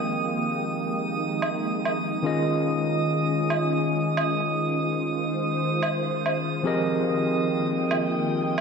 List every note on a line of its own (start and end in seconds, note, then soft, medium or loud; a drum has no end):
0.00 2.21 D#3 medium
0.00 2.21 F3 medium
0.00 6.61 G#3 medium
0.00 2.21 A#3 medium
0.00 2.21 C4 medium
0.00 2.22 G4 medium
0.00 2.22 G#4 medium
0.00 2.23 A#4 medium
0.00 2.23 D#5 medium
0.00 2.21 G5 medium
0.00 8.61 D#6 medium
0.04 2.22 D#4 medium
1.42 low woodblock medium
1.85 low woodblock medium
2.23 6.61 D#3 medium
2.23 8.61 D#3 medium
2.23 6.62 C#4 medium
2.23 4.43 C#4 medium
2.23 8.61 F4 medium
2.23 6.62 F4 medium
2.23 6.63 G#4 medium
2.23 6.63 D#5 medium
3.50 low woodblock medium
4.17 low woodblock medium
4.45 6.63 C5 medium
5.83 low woodblock medium
6.26 low woodblock medium
6.63 8.61 F3 medium
6.63 8.61 G#3 medium
6.63 8.61 A#3 medium
6.63 8.61 C4 medium
6.63 8.61 G4 medium
6.63 8.61 G#4 medium
6.63 8.61 A#4 medium
6.63 8.61 D#5 medium
6.63 8.61 G5 medium
7.91 low woodblock medium